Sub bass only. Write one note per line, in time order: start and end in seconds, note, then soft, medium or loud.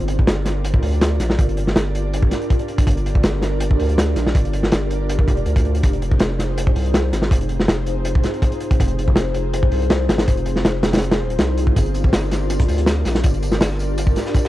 0.00 0.26 G1 loud
0.28 0.82 G1 loud
0.83 1.19 D2 medium
1.20 1.37 A#1 medium
1.39 1.74 G1 loud
1.76 2.30 G1 loud
2.87 3.23 G1 loud
3.24 3.78 G1 loud
3.79 4.15 D2 medium
4.16 4.33 A#1 medium
4.35 4.71 G1 loud
4.72 5.29 G1 loud
5.28 5.44 F1 medium
5.46 5.82 D2 medium
5.83 6.19 F1 loud
6.20 6.75 F1 loud
6.76 7.12 C2 medium
7.13 7.30 G#1 medium
7.31 7.67 F1 loud
7.68 8.23 F1 loud
8.80 9.15 F1 loud
9.16 9.71 F1 loud
9.72 10.08 C2 medium
10.09 10.26 G#1 medium
10.28 10.63 F1 loud
10.65 11.22 F1 loud
11.20 11.37 D#1 medium
11.39 11.74 C2 medium
11.76 12.12 G1 loud
12.12 12.67 G1 loud
12.68 13.04 D2 medium
13.05 13.22 A#1 medium
13.24 13.60 G1 loud
13.61 14.15 G1 loud